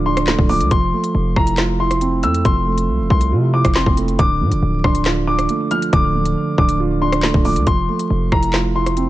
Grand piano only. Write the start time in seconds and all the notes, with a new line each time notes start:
0.06 C6
0.49 D6
0.71 C6
1.36 A#5
1.80 C6
2.23 E6
2.45 C6
3.10 C6
3.54 D6
3.75 C6
4.19 D6
4.84 C6
5.27 D6
5.71 F6
5.93 D6
6.58 D6
7.02 C6
7.45 D6
7.67 C6
8.32 A#5
8.76 C6